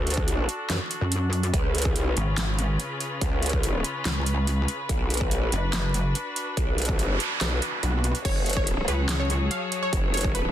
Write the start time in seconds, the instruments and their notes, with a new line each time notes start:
Already playing: wobble bass D2, string section D4 F#4 A4
0.07 closed hi-hat
0.10 closed hi-hat
0.14 kick, closed hi-hat
0.28 closed hi-hat
0.49 closed hi-hat
0.70 wobble bass F#2, snare, clap, closed hi-hat
0.91 closed hi-hat
1.01 wobble bass F#2
1.12 closed hi-hat
1.33 closed hi-hat
1.43 closed hi-hat
1.54 wobble bass C#2, string section C#3 C#4 F4 G#4 B4, kick, closed hi-hat
1.75 closed hi-hat
1.78 closed hi-hat
1.82 kick, closed hi-hat
1.96 wobble bass C2, closed hi-hat
2.17 wobble bass G#1, closed hi-hat
2.38 snare, clap, closed hi-hat
2.59 closed hi-hat
2.80 closed hi-hat
3.00 closed hi-hat
3.21 wobble bass C#2, kick, closed hi-hat
3.42 closed hi-hat
3.46 closed hi-hat
3.49 kick, closed hi-hat
3.63 closed hi-hat
3.84 closed hi-hat
4.05 wobble bass C#2, snare, clap, closed hi-hat
4.26 closed hi-hat
4.47 closed hi-hat
4.68 closed hi-hat
4.89 wobble bass B1, string section D4 F#4, kick, closed hi-hat
5.10 closed hi-hat
5.14 closed hi-hat
5.17 kick, closed hi-hat
5.31 wobble bass A#1, closed hi-hat
5.52 wobble bass F#1, closed hi-hat
5.73 snare, clap, closed hi-hat
5.94 closed hi-hat
6.15 closed hi-hat
6.36 closed hi-hat
6.57 wobble bass B1, kick, closed hi-hat, noise sweep
6.78 closed hi-hat
6.82 closed hi-hat
6.85 kick, closed hi-hat
6.99 closed hi-hat
7.20 closed hi-hat
7.41 wobble bass B1, snare, clap, closed hi-hat
7.62 closed hi-hat
7.83 wobble bass B1, closed hi-hat
8.04 closed hi-hat
8.15 closed hi-hat
8.25 wobble bass F#1, string section F#3 G#4 A4 C#5, synth pluck C#5, kick, closed hi-hat, crash
8.46 closed hi-hat
8.50 closed hi-hat
8.53 synth pluck C#5, kick, closed hi-hat
8.67 closed hi-hat
8.88 wobble bass C#2, synth pluck B4, closed hi-hat
9.09 snare, clap, closed hi-hat
9.20 synth pluck C#5
9.30 closed hi-hat
9.51 synth pluck F5, closed hi-hat
9.72 closed hi-hat
9.83 synth pluck C#5
9.93 wobble bass F#1, kick, closed hi-hat
10.14 synth pluck C#5, closed hi-hat
10.17 closed hi-hat
10.21 kick, closed hi-hat
10.35 synth pluck B4, closed hi-hat